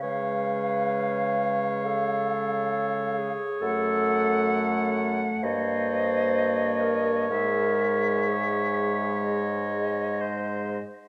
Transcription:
0.02 bassoon C#3, french horn G#3, clarinet B4, oboe C#5, flute F5
1.85 clarinet A4
3.18 clarinet G#4
3.62 bassoon F#2, french horn A3, clarinet A4, flute F#5
5.42 bassoon G2, french horn A#3, clarinet C5, oboe C#5, flute D#5
6.81 clarinet A#4
7.30 bassoon G#2, french horn G#3, clarinet A#4, flute E5
8.28 clarinet G#4
9.24 flute D#5
10.21 oboe C5

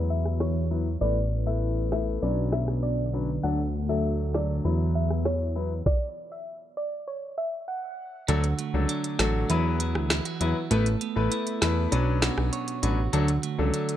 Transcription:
Already playing: analog synth bass E2, analog synth pad E3 B3 F#4, grand piano F#3 B3 E4 B4
0.10 synth pluck E5
0.26 cross-stick
0.40 synth pluck C#5, cross-stick, snare
0.71 grand piano F#3 B3 E4 B4
1.01 analog synth bass A1, grand piano A3 B3 E4 B4, analog synth pad A3 E4 B4, synth pluck D5
1.46 grand piano A3 B3 E4 B4, synth pluck E5
1.92 grand piano A3 B3 E4 B4, synth pluck E5, cross-stick, snare
2.22 analog synth bass B1, analog synth pad D3 B3, grand piano F#3 C#4 D4 B4, synth pluck D5
2.52 synth pluck E5, cross-stick, snare
2.68 cross-stick
2.83 synth pluck D5
3.13 grand piano F#3 C#4 D4 B4
3.43 analog synth bass D2, grand piano F#3 A3 D4 A4, analog synth pad A3 F#4, synth pluck F#5
3.89 grand piano F#3 A3 D4 A4, synth pluck E5
4.34 grand piano F#3 A3 D4 A4, synth pluck D5, cross-stick, snare
4.65 analog synth bass E2, analog synth pad E3 B3, grand piano F#3 B3 E4 B4
4.95 synth pluck E5
5.10 cross-stick
5.25 synth pluck C#5, cross-stick, snare
5.55 grand piano F#3 B3 E4 B4
5.86 synth pluck D5, kick, snare
6.32 synth pluck E5
6.77 synth pluck D5
7.08 synth pluck C#5
7.38 synth pluck E5
7.68 synth pluck F#5
8.28 analog synth bass D2, clean electric guitar D3 F#4, grand piano F#3 A3 D4 A4, closed hi-hat
8.44 closed hi-hat
8.59 clean electric guitar A3, closed hi-hat
8.74 analog synth bass C#2, grand piano F#3 A3 D4 A4
8.89 clean electric guitar D4, closed hi-hat
9.04 closed hi-hat
9.19 analog synth bass A1, grand piano F#3 A3 D4 A4, clean electric guitar F#4, cross-stick, snare, closed hi-hat
9.50 analog synth bass E2, clean electric guitar E3, grand piano F#3 B3 E4 B4, closed hi-hat
9.80 clean electric guitar E4, closed hi-hat
9.95 analog synth bass D2, cross-stick
10.10 clean electric guitar E4, cross-stick, snare, closed hi-hat
10.25 clean electric guitar F#4, closed hi-hat
10.40 analog synth bass E2, grand piano F#3 B3 E4 B4, clean electric guitar E4, closed hi-hat
10.71 analog synth bass A1, grand piano A3 B3 E4 B4, clean electric guitar A3 A4, closed hi-hat
10.86 closed hi-hat
11.01 clean electric guitar B3, closed hi-hat
11.16 analog synth bass A1, grand piano A3 B3 E4 B4
11.31 clean electric guitar E4, closed hi-hat
11.47 closed hi-hat
11.61 analog synth bass E2, grand piano A3 B3 E4 B4, clean electric guitar A4, cross-stick, snare, closed hi-hat
11.92 analog synth bass B1, clean electric guitar B2, grand piano F#3 C#4 D4 B4, closed hi-hat
12.22 clean electric guitar F#4, cross-stick, snare, closed hi-hat
12.38 analog synth bass B1, cross-stick
12.53 clean electric guitar C#5, closed hi-hat
12.68 closed hi-hat
12.82 analog synth bass A1, grand piano F#3 C#4 D4 B4, clean electric guitar F#4, closed hi-hat
13.13 analog synth bass D2, clean electric guitar D3 F#4, grand piano F#3 A3 D4 A4, closed hi-hat
13.28 closed hi-hat
13.43 clean electric guitar A3, closed hi-hat
13.58 analog synth bass C#2, grand piano F#3 A3 D4 A4
13.74 clean electric guitar D4, closed hi-hat
13.89 closed hi-hat

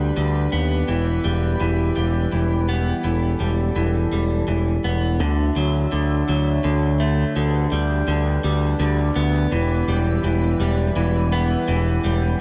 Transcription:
Already playing: picked electric bass D2, clean electric guitar D3 G3, analog synth pad D3 D4 G4 B4
0.17 picked electric bass D2, clean electric guitar D3
0.52 picked electric bass D#2, clean electric guitar B3
0.88 picked electric bass E1, clean electric guitar E3, analog synth pad E3 E4
1.24 picked electric bass E1, clean electric guitar G3
1.60 picked electric bass E1, clean electric guitar E3
1.96 picked electric bass E1, clean electric guitar G3
2.32 picked electric bass E1, clean electric guitar E3
2.69 clean electric guitar B3
3.04 picked electric bass E1, clean electric guitar E3, analog synth pad A4
3.40 picked electric bass E1, clean electric guitar G3
3.76 picked electric bass E1, clean electric guitar E3
4.12 picked electric bass E1, clean electric guitar G3
4.48 picked electric bass E1, clean electric guitar E3
4.84 picked electric bass E1, clean electric guitar B3
5.20 picked electric bass D2, clean electric guitar D3, analog synth pad D3 D4 F#4 E5
5.56 picked electric bass D2, clean electric guitar F#3
5.92 picked electric bass D2, clean electric guitar D3
6.29 picked electric bass D2, clean electric guitar F#3
6.64 picked electric bass D2, clean electric guitar D3
7.00 clean electric guitar A3
7.36 picked electric bass D2, clean electric guitar D3, analog synth pad D4 G4 B4
7.72 picked electric bass D2, clean electric guitar G3
8.07 picked electric bass D2, clean electric guitar D3
8.44 picked electric bass D2, clean electric guitar G3
8.79 picked electric bass D2, clean electric guitar D3
9.16 picked electric bass D2, clean electric guitar B3
9.52 picked electric bass E1, clean electric guitar E3, analog synth pad E3 E4
9.88 picked electric bass E1, clean electric guitar G3
10.24 picked electric bass E1, clean electric guitar E3
10.60 picked electric bass E1, clean electric guitar G3
10.96 picked electric bass E1, clean electric guitar E3
11.32 clean electric guitar B3
11.68 picked electric bass E1, clean electric guitar E3
12.04 picked electric bass E1, clean electric guitar G3

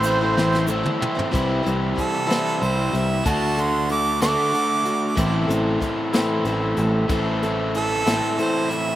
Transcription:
Already playing: fingered electric bass A1, steel-string acoustic guitar A3 C4 E4 C5, accordion C5
0.03 overdriven electric guitar E3 A3 C4 E4, ride, shaker
0.21 steel-string acoustic guitar A3 C4 E4 C5
0.37 steel-string acoustic guitar A2 E3 A3 C4 E4 C5, snare
0.53 snare, shaker
0.68 overdriven electric guitar E3, steel-string acoustic guitar A3 C4 E4 C5, shaker
0.83 steel-string acoustic guitar A3 C4 E4 C5, mid tom
1.00 overdriven electric guitar A3 C4 E4, mid tom
1.15 steel-string acoustic guitar A3 C4 E4 C5, floor tom
1.31 fingered electric bass C2, steel-string acoustic guitar C3 E3 G3 C4 E4 C5, kick, closed hi-hat
1.63 fingered electric bass C2, steel-string acoustic guitar G3 C4 E4 C5, closed hi-hat
1.95 steel-string acoustic guitar G3 C4 E4 C5, harmonica A4, kick, closed hi-hat
2.27 steel-string acoustic guitar C3 E3 G3 C4 E4 C5, closed hi-hat
2.31 overdriven electric guitar C3, snare
2.60 fingered electric bass C2, steel-string acoustic guitar G3 C4 E4 C5, harmonica C5, closed hi-hat
2.92 fingered electric bass C2, steel-string acoustic guitar G3 C4 E4 C5, closed hi-hat
2.97 harmonica E5
3.25 fingered electric bass D2, steel-string acoustic guitar D3 A3 D4 F#4 A4, kick, closed hi-hat
3.29 harmonica A5
3.57 steel-string acoustic guitar D4 F#4 A4, harmonica C6, closed hi-hat
3.88 steel-string acoustic guitar A3 D4 F#4 A4, harmonica D6, closed hi-hat
4.21 steel-string acoustic guitar D3 A3 D4 F#4 A4, harmonica D6, snare, closed hi-hat
4.52 steel-string acoustic guitar A3 D4 F#4 A4, closed hi-hat
4.84 steel-string acoustic guitar D4 F#4 A4, closed hi-hat
5.15 fingered electric bass A1, steel-string acoustic guitar A2 E3 A3 C4 E4 A4, kick, closed hi-hat
5.48 fingered electric bass A1, steel-string acoustic guitar A3 C4 E4 A4, closed hi-hat
5.80 steel-string acoustic guitar A3 C4 E4 A4, kick, closed hi-hat
6.13 steel-string acoustic guitar A2 E3 A3 C4 E4 A4, snare, closed hi-hat
6.45 fingered electric bass A1, steel-string acoustic guitar A3 C4 E4 A4, closed hi-hat
6.77 fingered electric bass A1, steel-string acoustic guitar A3 C4 E4 A4, closed hi-hat
7.09 fingered electric bass A1, steel-string acoustic guitar A2 E3 A3 C4 E4 A4, kick, closed hi-hat
7.43 steel-string acoustic guitar A3 C4 E4 A4, closed hi-hat
7.74 steel-string acoustic guitar A3 C4 E4 A4, harmonica A4, closed hi-hat
8.06 steel-string acoustic guitar A2 E3 A3 C4 E4 A4, snare, closed hi-hat
8.38 steel-string acoustic guitar A3 C4 E4 A4, harmonica C5, closed hi-hat
8.70 steel-string acoustic guitar A3 C4 E4 A4, harmonica E5, closed hi-hat

